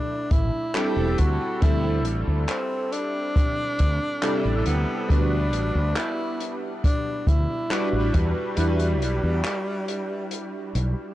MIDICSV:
0, 0, Header, 1, 5, 480
1, 0, Start_track
1, 0, Key_signature, 1, "major"
1, 0, Tempo, 869565
1, 893, Time_signature, 4, 2, 24, 8
1, 6149, End_track
2, 0, Start_track
2, 0, Title_t, "Electric grand piano"
2, 0, Program_c, 0, 2
2, 0, Control_c, 0, 64, 127
2, 0, Note_on_c, 0, 57, 76
2, 0, Note_on_c, 0, 62, 72
2, 0, Note_on_c, 0, 64, 69
2, 0, Note_on_c, 0, 67, 70
2, 0, Note_on_c, 0, 74, 85
2, 379, Note_off_c, 0, 57, 0
2, 381, Note_off_c, 0, 62, 0
2, 384, Note_off_c, 0, 64, 0
2, 386, Note_off_c, 0, 67, 0
2, 387, Note_off_c, 0, 74, 0
2, 411, Note_on_c, 0, 55, 85
2, 414, Note_on_c, 0, 60, 79
2, 416, Note_on_c, 0, 62, 80
2, 418, Note_on_c, 0, 64, 80
2, 420, Note_on_c, 0, 69, 100
2, 661, Control_c, 0, 64, 0
2, 759, Control_c, 0, 64, 127
2, 864, Note_off_c, 0, 55, 0
2, 865, Note_off_c, 0, 60, 0
2, 866, Note_off_c, 0, 62, 0
2, 867, Note_off_c, 0, 64, 0
2, 868, Note_off_c, 0, 69, 0
2, 888, Note_on_c, 0, 55, 80
2, 891, Note_on_c, 0, 60, 72
2, 895, Note_on_c, 0, 62, 74
2, 900, Note_on_c, 0, 64, 70
2, 902, Note_on_c, 0, 69, 86
2, 2302, Note_off_c, 0, 55, 0
2, 2304, Note_off_c, 0, 60, 0
2, 2306, Note_off_c, 0, 62, 0
2, 2308, Note_off_c, 0, 64, 0
2, 2309, Note_off_c, 0, 69, 0
2, 2329, Note_on_c, 0, 55, 86
2, 2331, Note_on_c, 0, 48, 81
2, 2334, Note_on_c, 0, 62, 80
2, 2336, Note_on_c, 0, 64, 82
2, 2339, Note_on_c, 0, 69, 97
2, 2783, Note_off_c, 0, 55, 0
2, 2784, Note_off_c, 0, 48, 0
2, 2785, Note_off_c, 0, 62, 0
2, 2786, Note_off_c, 0, 64, 0
2, 2788, Note_off_c, 0, 69, 0
2, 2806, Note_on_c, 0, 55, 81
2, 2811, Note_on_c, 0, 59, 73
2, 2815, Note_on_c, 0, 62, 73
2, 2819, Control_c, 0, 64, 0
2, 2819, Note_on_c, 0, 66, 70
2, 2823, Note_on_c, 0, 71, 86
2, 2907, Control_c, 0, 64, 127
2, 4221, Note_off_c, 0, 55, 0
2, 4224, Note_off_c, 0, 59, 0
2, 4226, Note_off_c, 0, 62, 0
2, 4228, Note_off_c, 0, 66, 0
2, 4230, Note_off_c, 0, 71, 0
2, 4250, Note_on_c, 0, 55, 90
2, 4253, Note_on_c, 0, 62, 82
2, 4255, Note_on_c, 0, 64, 82
2, 4258, Note_on_c, 0, 66, 84
2, 4260, Note_on_c, 0, 71, 96
2, 4501, Control_c, 0, 64, 0
2, 4604, Control_c, 0, 64, 127
2, 4704, Note_off_c, 0, 55, 0
2, 4705, Note_off_c, 0, 62, 0
2, 4706, Note_off_c, 0, 64, 0
2, 4707, Note_off_c, 0, 66, 0
2, 4708, Note_off_c, 0, 71, 0
2, 4725, Note_on_c, 0, 55, 78
2, 4728, Note_on_c, 0, 62, 71
2, 4734, Note_on_c, 0, 64, 73
2, 4737, Note_on_c, 0, 66, 72
2, 4741, Note_on_c, 0, 71, 86
2, 6141, Note_off_c, 0, 55, 0
2, 6142, Note_off_c, 0, 62, 0
2, 6145, Note_off_c, 0, 64, 0
2, 6147, Note_off_c, 0, 66, 0
2, 6149, Note_off_c, 0, 71, 0
2, 6149, End_track
3, 0, Start_track
3, 0, Title_t, "Tenor saxophone"
3, 0, Program_c, 1, 66
3, 0, Note_on_c, 1, 62, 103
3, 177, Note_on_c, 1, 64, 106
3, 185, Note_off_c, 1, 62, 0
3, 418, Note_on_c, 1, 67, 108
3, 426, Note_off_c, 1, 64, 0
3, 658, Note_on_c, 1, 66, 104
3, 667, Note_off_c, 1, 67, 0
3, 896, Note_off_c, 1, 66, 0
3, 899, Note_on_c, 1, 64, 108
3, 1207, Note_off_c, 1, 64, 0
3, 1377, Note_on_c, 1, 60, 95
3, 1612, Note_on_c, 1, 62, 125
3, 1621, Note_off_c, 1, 60, 0
3, 2573, Note_off_c, 1, 62, 0
3, 2576, Note_on_c, 1, 59, 96
3, 2815, Note_on_c, 1, 62, 105
3, 2824, Note_off_c, 1, 59, 0
3, 3295, Note_on_c, 1, 64, 100
3, 3303, Note_off_c, 1, 62, 0
3, 3627, Note_off_c, 1, 64, 0
3, 3777, Note_on_c, 1, 62, 102
3, 4017, Note_on_c, 1, 64, 102
3, 4025, Note_off_c, 1, 62, 0
3, 4258, Note_on_c, 1, 62, 96
3, 4266, Note_off_c, 1, 64, 0
3, 4499, Note_on_c, 1, 55, 96
3, 4507, Note_off_c, 1, 62, 0
3, 6149, Note_off_c, 1, 55, 0
3, 6149, End_track
4, 0, Start_track
4, 0, Title_t, "Fretless electric bass"
4, 0, Program_c, 2, 35
4, 174, Note_on_c, 2, 33, 95
4, 272, Note_off_c, 2, 33, 0
4, 533, Note_on_c, 2, 28, 82
4, 628, Note_off_c, 2, 28, 0
4, 658, Note_on_c, 2, 38, 102
4, 754, Note_off_c, 2, 38, 0
4, 895, Note_on_c, 2, 38, 97
4, 1131, Note_off_c, 2, 38, 0
4, 1131, Note_on_c, 2, 33, 106
4, 1231, Note_off_c, 2, 33, 0
4, 1256, Note_on_c, 2, 38, 105
4, 1350, Note_off_c, 2, 38, 0
4, 2097, Note_on_c, 2, 38, 97
4, 2194, Note_off_c, 2, 38, 0
4, 2456, Note_on_c, 2, 33, 84
4, 2550, Note_off_c, 2, 33, 0
4, 2575, Note_on_c, 2, 38, 101
4, 2673, Note_off_c, 2, 38, 0
4, 2816, Note_on_c, 2, 38, 94
4, 3052, Note_off_c, 2, 38, 0
4, 3052, Note_on_c, 2, 33, 104
4, 3151, Note_off_c, 2, 33, 0
4, 3176, Note_on_c, 2, 38, 105
4, 3270, Note_off_c, 2, 38, 0
4, 4013, Note_on_c, 2, 38, 93
4, 4111, Note_off_c, 2, 38, 0
4, 4376, Note_on_c, 2, 33, 87
4, 4470, Note_off_c, 2, 33, 0
4, 4496, Note_on_c, 2, 40, 103
4, 4593, Note_off_c, 2, 40, 0
4, 4732, Note_on_c, 2, 40, 98
4, 4973, Note_off_c, 2, 40, 0
4, 4973, Note_on_c, 2, 35, 104
4, 5072, Note_off_c, 2, 35, 0
4, 5097, Note_on_c, 2, 40, 106
4, 5190, Note_off_c, 2, 40, 0
4, 5934, Note_on_c, 2, 35, 102
4, 6032, Note_off_c, 2, 35, 0
4, 6149, End_track
5, 0, Start_track
5, 0, Title_t, "Drums"
5, 173, Note_on_c, 9, 42, 76
5, 174, Note_on_c, 9, 36, 101
5, 228, Note_off_c, 9, 42, 0
5, 229, Note_off_c, 9, 36, 0
5, 414, Note_on_c, 9, 39, 114
5, 414, Note_on_c, 9, 42, 81
5, 469, Note_off_c, 9, 39, 0
5, 469, Note_off_c, 9, 42, 0
5, 652, Note_on_c, 9, 42, 70
5, 658, Note_on_c, 9, 36, 61
5, 708, Note_off_c, 9, 42, 0
5, 713, Note_off_c, 9, 36, 0
5, 894, Note_on_c, 9, 42, 93
5, 896, Note_on_c, 9, 36, 122
5, 950, Note_off_c, 9, 42, 0
5, 951, Note_off_c, 9, 36, 0
5, 1131, Note_on_c, 9, 42, 69
5, 1186, Note_off_c, 9, 42, 0
5, 1368, Note_on_c, 9, 42, 93
5, 1374, Note_on_c, 9, 39, 104
5, 1423, Note_off_c, 9, 42, 0
5, 1430, Note_off_c, 9, 39, 0
5, 1614, Note_on_c, 9, 42, 76
5, 1670, Note_off_c, 9, 42, 0
5, 1854, Note_on_c, 9, 36, 119
5, 1858, Note_on_c, 9, 42, 77
5, 1909, Note_off_c, 9, 36, 0
5, 1913, Note_off_c, 9, 42, 0
5, 2092, Note_on_c, 9, 42, 74
5, 2097, Note_on_c, 9, 36, 61
5, 2147, Note_off_c, 9, 42, 0
5, 2153, Note_off_c, 9, 36, 0
5, 2333, Note_on_c, 9, 39, 118
5, 2336, Note_on_c, 9, 42, 92
5, 2388, Note_off_c, 9, 39, 0
5, 2391, Note_off_c, 9, 42, 0
5, 2571, Note_on_c, 9, 42, 79
5, 2626, Note_off_c, 9, 42, 0
5, 2815, Note_on_c, 9, 36, 116
5, 2817, Note_on_c, 9, 42, 79
5, 2871, Note_off_c, 9, 36, 0
5, 2872, Note_off_c, 9, 42, 0
5, 3053, Note_on_c, 9, 42, 76
5, 3108, Note_off_c, 9, 42, 0
5, 3292, Note_on_c, 9, 39, 127
5, 3292, Note_on_c, 9, 42, 88
5, 3347, Note_off_c, 9, 39, 0
5, 3347, Note_off_c, 9, 42, 0
5, 3535, Note_on_c, 9, 42, 73
5, 3590, Note_off_c, 9, 42, 0
5, 3775, Note_on_c, 9, 36, 114
5, 3775, Note_on_c, 9, 42, 92
5, 3830, Note_off_c, 9, 36, 0
5, 3830, Note_off_c, 9, 42, 0
5, 4012, Note_on_c, 9, 36, 109
5, 4017, Note_on_c, 9, 42, 69
5, 4067, Note_off_c, 9, 36, 0
5, 4072, Note_off_c, 9, 42, 0
5, 4255, Note_on_c, 9, 39, 109
5, 4257, Note_on_c, 9, 42, 85
5, 4310, Note_off_c, 9, 39, 0
5, 4312, Note_off_c, 9, 42, 0
5, 4494, Note_on_c, 9, 42, 73
5, 4496, Note_on_c, 9, 36, 60
5, 4549, Note_off_c, 9, 42, 0
5, 4552, Note_off_c, 9, 36, 0
5, 4729, Note_on_c, 9, 42, 96
5, 4784, Note_off_c, 9, 42, 0
5, 4854, Note_on_c, 9, 42, 58
5, 4909, Note_off_c, 9, 42, 0
5, 4978, Note_on_c, 9, 42, 73
5, 5034, Note_off_c, 9, 42, 0
5, 5214, Note_on_c, 9, 39, 122
5, 5219, Note_on_c, 9, 42, 93
5, 5269, Note_off_c, 9, 39, 0
5, 5274, Note_off_c, 9, 42, 0
5, 5455, Note_on_c, 9, 42, 74
5, 5510, Note_off_c, 9, 42, 0
5, 5692, Note_on_c, 9, 42, 90
5, 5747, Note_off_c, 9, 42, 0
5, 5934, Note_on_c, 9, 42, 74
5, 5990, Note_off_c, 9, 42, 0
5, 6149, End_track
0, 0, End_of_file